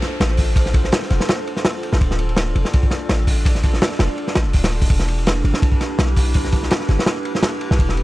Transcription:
0.00 8.03 D4 medium
0.00 4.86 F4 medium
0.00 4.86 A4 medium
0.00 1.98 C5 medium
0.00 snare soft
0.00 ride medium
0.00 downlifter medium
0.20 0.91 A1 medium
0.20 snare loud
0.20 ride medium
0.30 ride soft
0.37 kick medium
0.37 open hi-hat medium
0.56 kick loud
0.56 ride medium
0.66 snare soft
0.74 kick loud
0.74 ride medium
0.84 snare soft
0.92 snare loud
0.92 ride medium
1.02 snare soft
1.10 1.20 F1 medium
1.10 snare soft
1.10 ride medium
1.20 snare medium
1.29 snare loud
1.29 ride medium
1.47 ride medium
1.57 snare soft
1.65 snare loud
1.65 ride medium
1.83 ride medium
1.93 2.00 A1 loud
1.93 snare medium
2.01 2.54 D1 medium
2.01 4.87 D5 loud
2.01 kick loud
2.01 ride medium
2.11 snare medium
2.19 ride medium
2.29 ride soft
2.37 snare loud
2.37 ride medium
2.56 2.64 F1 loud
2.56 ride medium
2.65 snare soft
2.73 kick loud
2.73 ride medium
2.83 kick loud
2.91 snare soft
2.91 ride medium
3.09 3.81 A1 medium
3.09 snare loud
3.09 ride medium
3.19 ride soft
3.27 kick medium
3.27 open hi-hat medium
3.45 kick loud
3.45 ride medium
3.55 snare soft
3.63 kick loud
3.63 ride medium
3.74 snare soft
3.82 snare loud
3.82 ride medium
3.92 snare soft
3.99 4.09 F1 loud
3.99 snare loud
3.99 ride medium
4.18 ride medium
4.27 snare soft
4.35 4.47 A1 loud
4.35 snare loud
4.35 ride medium
4.46 4.53 F1 medium
4.46 ride soft
4.53 4.89 D1 medium
4.53 kick medium
4.53 open hi-hat medium
4.64 snare loud
4.64 ride medium
4.72 ride soft
4.82 kick medium
4.82 open hi-hat medium
4.90 5.43 E1 loud
4.90 8.03 E4 medium
4.90 8.03 G4 medium
4.90 8.03 B4 medium
4.90 kick loud
4.90 ride medium
4.99 snare soft
5.08 ride medium
5.18 ride soft
5.27 snare loud
5.27 ride medium
5.44 5.53 G1 medium
5.44 ride medium
5.54 snare soft
5.62 kick loud
5.62 ride medium
5.72 kick loud
5.81 snare soft
5.81 ride medium
5.99 6.70 B1 medium
5.99 snare loud
5.99 ride medium
6.08 ride soft
6.16 kick medium
6.16 open hi-hat medium
6.34 kick loud
6.34 ride medium
6.44 snare soft
6.52 kick loud
6.52 ride medium
6.63 snare soft
6.71 snare loud
6.71 ride medium
6.80 snare soft
6.89 6.98 G1 loud
6.89 snare soft
6.89 ride medium
6.99 snare medium
7.06 snare loud
7.06 ride medium
7.25 ride medium
7.35 snare soft
7.43 snare loud
7.43 ride medium
7.61 ride medium
7.71 7.79 B1 loud
7.71 snare medium
7.79 8.03 E1 medium
7.79 kick loud
7.79 ride medium
7.89 snare soft
7.97 ride medium

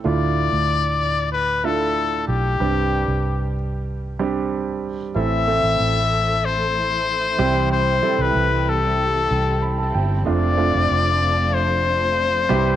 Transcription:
0.04 0.50 D2 medium
0.04 0.97 A2 soft
0.04 0.98 A3 medium
0.04 0.98 D4 medium
0.04 0.98 E4 medium
0.04 0.98 F4 medium
0.04 1.30 D5 loud
0.53 2.24 D2 medium
1.32 1.67 B4 medium
1.64 2.34 A3 medium
1.64 2.34 D4 medium
1.64 2.34 E4 medium
1.64 2.34 F4 medium
1.64 2.27 A4 medium
2.28 2.58 B1 medium
2.28 3.52 G4 medium
2.60 3.05 C2 medium
2.60 3.52 G2 soft
2.60 3.53 G3 medium
2.60 3.53 C4 medium
2.60 3.53 D4 soft
2.60 3.53 G4 medium
3.08 5.12 C2 medium
4.19 4.90 G3 medium
4.19 4.90 C4 medium
4.19 4.89 D4 medium
4.19 4.90 G4 medium
5.15 5.61 A1 medium
5.15 6.08 A2 medium
5.15 10.22 E3 medium
5.15 6.07 E3 medium
5.15 5.39 A3 medium
5.15 7.37 A3 medium
5.15 12.76 C4 medium
5.15 5.39 C4 medium
5.15 10.22 E4 medium
5.15 5.39 E4 medium
5.15 7.37 A4 medium
5.15 5.39 A4 medium
5.15 6.47 E5 loud
5.48 6.41 A3 medium
5.48 6.41 C4 medium
5.48 6.41 E4 medium
5.48 6.41 A4 medium
5.63 5.78 A1 medium
5.80 7.36 A1 medium
6.46 7.72 C5 loud
7.39 7.99 C2 medium
7.39 8.31 C3 medium
7.39 7.90 G3 medium
7.39 10.24 G3 medium
7.39 7.90 C4 medium
7.39 7.90 E4 medium
7.39 7.90 G4 medium
7.39 10.24 G4 medium
7.72 8.23 C5 medium
8.02 8.96 G3 medium
8.02 8.96 C4 medium
8.02 8.96 E4 medium
8.02 8.96 A4 medium
8.19 8.34 C2 medium
8.19 8.71 B4 medium
8.35 9.27 C2 medium
8.69 9.96 A4 medium
9.31 9.91 C2 medium
9.62 9.77 B5 medium
9.78 9.93 A5 medium
9.94 10.25 G1 medium
9.94 10.24 G5 medium
10.25 10.71 F1 medium
10.25 11.18 C3 medium
10.25 12.48 F3 medium
10.25 10.49 A3 medium
10.25 12.48 A3 medium
10.25 10.49 C4 medium
10.25 10.49 D4 medium
10.25 12.47 D4 medium
10.25 10.49 F4 medium
10.25 12.48 F4 medium
10.25 11.56 D5 medium
10.57 11.51 A3 medium
10.57 11.51 C4 medium
10.57 11.51 D4 medium
10.57 11.51 F4 medium
10.75 10.89 F1 medium
10.91 12.46 F1 loud
11.54 12.76 C5 loud
12.49 12.76 C2 medium
12.49 12.76 G2 medium
12.49 12.76 E3 medium
12.49 12.76 G3 medium
12.49 12.76 C4 medium
12.49 12.76 E4 medium
12.49 12.76 G4 loud
12.49 12.76 G4 medium

